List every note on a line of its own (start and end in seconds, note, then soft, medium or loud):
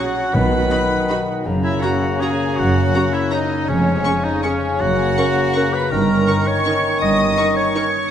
0.00 0.35 A#2 medium
0.00 0.35 F#3 medium
0.00 0.42 F#3 soft
0.00 1.42 F#3 medium
0.00 0.35 A#3 soft
0.00 0.23 C#4 soft
0.00 0.32 C#4 medium
0.00 0.14 F#4 soft
0.00 0.36 F#4 medium
0.00 0.33 F#5 medium
0.00 0.89 F#5 medium
0.00 1.47 F#5 medium
0.00 0.36 C#6 medium
0.06 0.35 C#5 soft
0.15 0.60 F#4 soft
0.24 0.35 C#4 medium
0.33 0.65 B1 medium
0.33 1.47 B2 medium
0.33 0.64 B2 medium
0.33 0.86 B2 medium
0.33 1.45 D#3 medium
0.33 1.46 D#4 medium
0.33 1.28 B4 medium
0.33 1.28 B5 medium
0.43 3.70 F#3 soft
0.52 1.47 B3 soft
0.61 1.36 F#4 soft
0.70 0.79 D#4 medium
0.70 0.79 F#4 medium
0.70 1.27 D#5 soft
0.70 0.78 B5 medium
0.80 1.17 B4 soft
0.91 1.08 F#5 soft
1.00 1.47 D#6 medium
1.09 1.17 D#4 medium
1.09 1.18 F#4 medium
1.09 2.02 F#5 medium
1.09 1.17 B5 medium
1.18 1.47 B4 medium
1.28 1.47 D#5 medium
1.37 1.72 F#4 soft
1.45 1.76 F#1 medium
1.45 2.57 F#2 medium
1.45 1.76 F#2 medium
1.45 3.37 C#3 medium
1.45 3.66 A#3 medium
1.45 3.66 C#4 medium
1.45 3.41 A#5 medium
1.55 2.66 C#3 soft
1.63 2.75 A#3 soft
1.63 1.84 E4 medium
1.63 1.85 E4 medium
1.63 1.81 E5 medium
1.74 2.48 F#4 soft
1.82 1.91 C#4 medium
1.82 2.21 F#4 medium
1.82 1.91 F#4 medium
1.82 2.21 F#4 medium
1.82 2.39 C#5 medium
1.82 2.22 F#5 medium
1.82 1.91 A#5 medium
1.93 2.30 A#4 soft
2.03 2.21 F#5 medium
2.13 3.23 C#6 medium
2.20 2.29 C#4 medium
2.20 2.29 F#4 medium
2.20 2.58 G#4 medium
2.20 2.60 G#4 medium
2.20 3.13 F#5 medium
2.20 2.57 G#5 medium
2.20 2.30 A#5 medium
2.31 3.04 A#4 medium
2.40 2.93 C#5 medium
2.49 2.84 F#4 medium
2.56 2.88 F#1 medium
2.56 2.88 F#2 medium
2.56 3.70 F#2 medium
2.56 3.15 F#4 medium
2.56 3.14 F#4 medium
2.56 3.12 F#5 medium
2.67 3.71 C#3 medium
2.76 3.70 A#3 medium
2.85 3.59 F#4 soft
2.95 3.03 C#4 medium
2.95 3.03 F#4 medium
2.95 3.03 A#5 medium
3.05 3.40 A#4 soft
3.13 3.34 E4 medium
3.13 3.33 E4 medium
3.13 3.32 E5 medium
3.13 3.32 F#5 medium
3.24 4.33 C#6 medium
3.31 3.40 C#4 medium
3.31 3.69 D#4 medium
3.31 3.70 D#4 medium
3.31 3.40 F#4 medium
3.31 3.69 D#5 medium
3.31 3.70 F#5 medium
3.31 3.39 A#5 medium
3.42 3.70 A#4 medium
3.51 4.04 C#5 medium
3.60 3.70 F#4 medium
3.68 3.99 F1 medium
3.68 4.82 F2 medium
3.68 3.99 F2 medium
3.68 5.87 C#3 medium
3.68 4.65 G#3 medium
3.68 4.26 C#4 medium
3.68 5.87 C#4 medium
3.68 4.25 C#5 medium
3.68 4.83 G#5 medium
3.77 4.82 F3 soft
3.87 4.82 G#3 medium
3.95 4.14 G#4 soft
4.05 4.13 C#4 medium
4.05 4.14 G#4 medium
4.05 4.62 C#5 medium
4.05 4.13 C#6 medium
4.15 4.52 G#4 medium
4.24 4.45 D#4 medium
4.24 4.42 D#4 medium
4.24 4.44 D#5 medium
4.24 4.42 G#5 medium
4.34 5.45 C#6 medium
4.43 4.82 C#4 medium
4.43 4.52 C#4 medium
4.43 4.52 G#4 medium
4.43 4.81 C#5 medium
4.43 4.51 C#6 medium
4.53 4.71 G#4 medium
4.64 5.17 C#5 medium
4.72 4.82 G#4 medium
4.80 5.11 F#1 medium
4.80 5.11 F#2 medium
4.80 5.92 F#2 medium
4.80 5.89 A#3 medium
4.80 5.75 F#4 medium
4.80 5.75 F#4 loud
4.80 5.74 F#5 medium
4.80 5.90 A#5 medium
4.90 5.92 C#3 soft
4.99 6.09 A#3 medium
5.08 5.81 F#4 soft
5.18 5.26 C#4 medium
5.18 5.26 A#4 medium
5.18 5.26 C#6 medium
5.27 5.63 A#4 medium
5.46 6.55 C#6 medium
5.54 5.64 C#4 medium
5.54 5.64 A#4 medium
5.54 5.62 C#6 medium
5.73 5.93 B4 medium
5.73 5.91 B4 medium
5.73 6.27 C#5 medium
5.73 5.91 B5 medium
5.82 5.92 F#4 medium
5.90 6.21 G1 medium
5.90 6.21 G2 medium
5.90 7.01 G2 medium
5.90 8.07 D#3 medium
5.90 8.11 C#4 medium
5.90 8.10 D#4 medium
5.90 6.49 A#4 medium
5.90 6.48 A#4 medium
5.90 6.45 A#5 medium
5.90 8.11 C#6 medium
6.00 7.09 G3 soft
6.10 7.18 A#3 medium
6.18 6.92 D#4 medium
6.27 6.36 D#4 medium
6.27 6.36 A#4 medium
6.27 6.83 C#5 medium
6.27 6.35 C#6 medium
6.38 6.74 A#4 medium
6.46 7.01 C#5 medium
6.46 6.65 D#5 medium
6.46 7.00 C#6 medium
6.57 7.65 C#6 medium
6.65 6.74 D#4 medium
6.65 6.74 A#4 medium
6.65 7.55 D#5 medium
6.65 6.73 C#6 medium
6.76 7.46 A#4 medium
6.84 7.37 C#5 soft
6.93 7.27 D#4 medium
7.00 7.31 G1 medium
7.00 7.31 G2 medium
7.00 8.11 G2 medium
7.00 7.55 D#5 medium
7.00 7.56 D#5 medium
7.00 7.56 D#6 medium
7.10 8.11 G3 soft
7.19 8.11 A#3 medium
7.28 8.02 D#4 soft
7.38 7.46 D#4 medium
7.38 7.46 A#4 medium
7.38 7.92 C#5 soft
7.38 7.46 C#6 medium
7.47 7.84 A#4 medium
7.55 8.11 C#5 medium
7.55 7.74 D#5 medium
7.55 8.09 C#6 medium
7.66 8.11 C#6 medium
7.75 7.83 D#4 medium
7.75 7.83 A#4 medium
7.75 8.11 D#5 medium
7.75 7.83 C#6 medium
7.85 8.11 A#4 medium
7.93 8.11 C#5 medium
8.03 8.11 D#4 soft